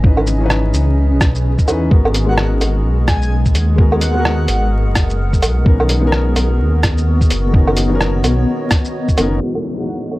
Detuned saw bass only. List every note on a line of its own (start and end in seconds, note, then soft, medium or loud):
0.00 0.73 G#1 medium
0.74 1.14 C#2 loud
1.12 1.57 B1 medium
1.68 1.90 E2 medium
1.91 2.60 G#1 loud
2.61 2.86 G#1 loud
2.84 3.54 B1 medium
3.54 4.47 D#2 medium
4.48 4.88 G#1 loud
4.86 5.44 F#1 medium
5.42 5.64 B1 loud
5.66 6.35 B1 loud
6.37 6.61 B1 loud
6.60 7.29 D#2 medium
7.30 8.23 F#1 medium
8.24 8.46 B1 loud
9.18 9.40 F#1 medium